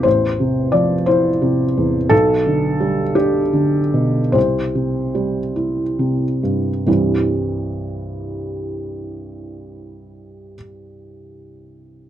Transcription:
X:1
M:6/8
L:1/8
Q:3/8=48
K:C
V:1 name="Felt piano"
c2 d c3 | A3 G3 | c4- c z | [C,,G,,E,G,CE]6- |
[C,,G,,E,G,CE]6 |]
V:2 name="Felt piano" clef=bass
[A,,,E,,] C, F, E C, E,, | B,,, D, G, D D, B,, | C,, C, G, E C, G,, | z6 |
z6 |]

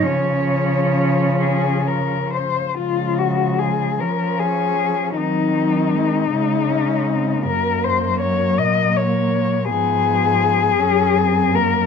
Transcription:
X:1
M:6/8
L:1/16
Q:3/8=52
K:Db
V:1 name="Cello"
d6 A2 B2 c2 | F2 G2 A2 B2 A4 | E12 | B2 c2 d2 e2 d4 |
A8- A2 B2 |]
V:2 name="Cello"
D8- D2 z2 | A,6 D6 | C6 A,2 D2 C2 | B,12 |
_C6 D2 =C2 B,2 |]
V:3 name="Cello" clef=bass
F,8- F,3 z | F,6 F,6 | G,2 G,2 A,2 A,6 | G,12 |
F,6 G,6 |]
V:4 name="Cello" clef=bass
D,8- D,3 z | D,6 F,6 | E,6 D,6 | G,,6 B,,6 |
A,,6 G,,6 |]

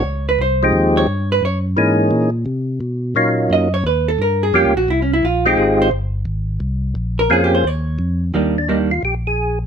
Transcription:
X:1
M:4/4
L:1/8
Q:"Swing" 1/4=174
K:Ebmix
V:1 name="Hollow-body jazz guitar"
d _c =c z2 d2 _c | d z6 z | z4 ^d ^c =B =A | B A G _G (3_F D F =F =G |
A c z6 | z B (3A G c d3 z | [K:Eb] [E,G,B,D] z [E,G,B,D] z4 z |]
V:2 name="Tonewheel organ"
z3 [F,A,CEG]3 z2 | z2 [_F,B,DEA]3 z3 | z2 [^F,^A,^C^D^E]3 z3 | z2 [G,B,DFG] z4 [A,CEFG]- |
[A,CEFG]2 z6 | z2 [B,CDFA]2 z4 | [K:Eb] z D E F G A2 z |]
V:3 name="Tonewheel organ" clef=bass
D,,2 C,,2 E,,2 G,,2 | _G,,2 A,,2 B,,2 C,2 | =B,,2 ^A,,2 ^F,,2 ^D,,2 | G,,2 (3F,, D,, B,,, C,,2 B,,,2 |
A,,,2 G,,,2 A,,,2 C,,2 | B,,,2 F,,2 E,,2 F,,2 | [K:Eb] E,,4 B,,,4 |]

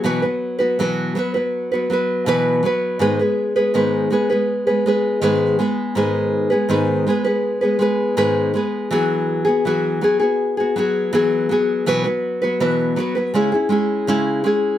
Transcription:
X:1
M:4/4
L:1/16
Q:1/4=81
K:G#phr
V:1 name="Nylon-string guitar"
[B,,E,F,B,FB] [F,B,FB]2 [F,B,FB] [B,,E,F,B,FB]2 [F,B,FB] [F,B,FB]2 [F,B,FB] [F,B,FB]2 [B,,E,F,B,FB]2 [F,B,FB]2 | [G,,D,G,B,GB] [G,B,GB]2 [G,B,GB] [G,,D,G,B,GB]2 [G,B,GB] [G,B,GB]2 [G,B,GB] [G,B,GB]2 [G,,D,G,B,GB]2 [G,B,GB]2 | [G,,D,G,B,GB]3 [G,B,GB] [G,,D,G,B,GB]2 [G,B,GB] [G,B,GB]2 [G,B,GB] [G,B,GB]2 [G,,D,G,B,GB]2 [G,B,GB]2 | [E,F,B,FG]3 [B,FG] [E,F,B,FG]2 [F,B,FG] [B,FG]2 [B,FG] [F,B,FG]2 [E,F,B,FG]2 [F,B,FG]2 |
[B,,E,F,B,FB] [F,B,FB]2 [F,B,FB] [B,,E,F,B,FB]2 [F,B,FB] [F,B,FB] [C,G,CEG] [CEG] [G,CEG]2 [C,G,CEG]2 [G,CEG]2 |]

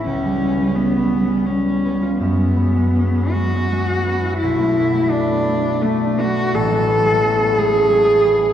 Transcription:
X:1
M:3/4
L:1/16
Q:1/4=84
K:A
V:1 name="Cello"
C4 B,4 C4 | B,6 F6 | E4 D4 A,2 F2 | A6 G6 |]
V:2 name="Harp"
[C,,G,B,Cc] =G, B, G, C B, G, C G, C B, ^E | F,, G, B, G, C B, G, C G, C B, E | B,,, A, B, A, D B, A, D A, D B, D | A,,, G, B, G, C B, G, C G, C B, E |]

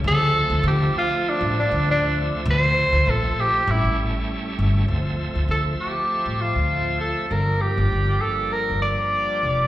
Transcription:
X:1
M:4/4
L:1/16
Q:"Swing 16ths" 1/4=99
K:Dm
V:1 name="Tenor saxophone"
A4 G2 F2 D2 D2 D2 z2 | c4 A2 G2 E2 z6 | z4 A2 G4 F4 A2 | B2 G4 A2 B2 d6 |]
V:2 name="Tonewheel organ"
[F,A,Ce]16- | [F,A,Ce]8 [G,A,^CE]8 | [F,A,Ce]16 | [F,G,B,D]16 |]
V:3 name="Upright bass" clef=bass
D,,3 D,, D,2 z3 A,,,2 D,,4- D,, | D,,3 D,, B,,,2 z2 A,,, A,,,2 z3 G,,,2 | D,,3 D,, D,2 z3 A,,,2 D,,4- D,, | G,,,3 G,,, G,,,2 z3 G,,,2 z3 F,,,2 |]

